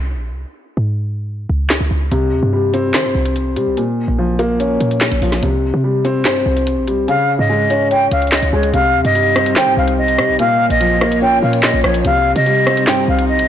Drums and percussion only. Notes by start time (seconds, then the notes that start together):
1.70 snare, clap
2.12 closed hi-hat
2.74 closed hi-hat
2.94 snare, clap, closed hi-hat
3.25 closed hi-hat
3.36 closed hi-hat
3.56 closed hi-hat
3.77 closed hi-hat
4.39 closed hi-hat
4.60 closed hi-hat
4.80 closed hi-hat
4.91 closed hi-hat
5.01 snare, clap
5.12 closed hi-hat
5.22 open hi-hat
5.32 snare, closed hi-hat
5.43 closed hi-hat
6.05 closed hi-hat
6.25 snare, clap, closed hi-hat
6.57 closed hi-hat
6.67 closed hi-hat
6.88 closed hi-hat
7.08 closed hi-hat
7.70 closed hi-hat
7.91 closed hi-hat
8.11 closed hi-hat
8.22 closed hi-hat
8.27 closed hi-hat
8.32 snare, clap, closed hi-hat
8.37 closed hi-hat
8.43 closed hi-hat
8.63 closed hi-hat
8.74 closed hi-hat
9.05 closed hi-hat
9.15 closed hi-hat
9.36 cross-stick
9.46 closed hi-hat
9.56 snare, clap
9.88 closed hi-hat
10.08 closed hi-hat
10.19 cross-stick
10.39 closed hi-hat
10.70 closed hi-hat
10.81 closed hi-hat
11.01 cross-stick
11.12 closed hi-hat
11.53 closed hi-hat
11.63 snare, clap, closed hi-hat
11.84 cross-stick
11.94 closed hi-hat
12.05 closed hi-hat
12.36 closed hi-hat
12.46 closed hi-hat
12.67 cross-stick
12.77 closed hi-hat
12.87 snare, clap
13.19 closed hi-hat
13.39 closed hi-hat